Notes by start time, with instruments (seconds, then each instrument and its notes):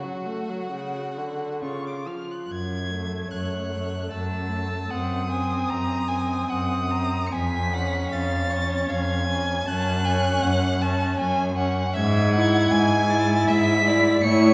Already playing: cello C#3, violin F#4 F#5
0.04 viola F#3
0.26 viola A3
0.49 viola F#3
0.72 viola C#3
1.17 viola D3
1.62 viola C#3, cello C#3, violin F4 C#6
1.87 violin D6
2.07 viola F3, violin F6
2.31 violin F#6
2.49 cello F#2, violin G#6
2.91 viola A3
3.30 cello F#2, violin C#5 F#6
3.70 viola A3
4.11 cello F#2, violin A5 E6
4.51 viola A3
4.90 cello F#2, viola C4, violin F#5 D#6
5.30 viola C4, violin G#5
5.70 cello F#2, violin A#5
6.08 viola C4, violin G#5
6.49 cello F#2, violin F#5 D#6
6.91 viola C4, violin A#5
7.26 violin C#7
7.32 cello F2, violin G#5 B6
7.74 viola C#4, violin F#5
8.11 cello F2, violin F5 A6
8.50 viola C#4, violin C#5
8.89 cello F2, violin F5 G#6
9.27 viola C#4, violin G#5
9.66 cello F#2, viola C#4, violin A5 F#6
10.05 viola C#4, violin G#5
10.43 cello F#2, violin F#5
10.82 viola C#4, violin A5
11.19 cello F#2, violin G#5
11.57 viola C#4, violin F#5
11.94 cello G#2, violin E5 G#6
12.33 viola E4, violin F#5
12.70 cello G#2, violin G#5
13.09 viola E4, violin A6
13.47 cello G#2, violin E5 B6
13.86 viola E4, violin D5
14.23 cello A2, viola E4, violin C#5 C#7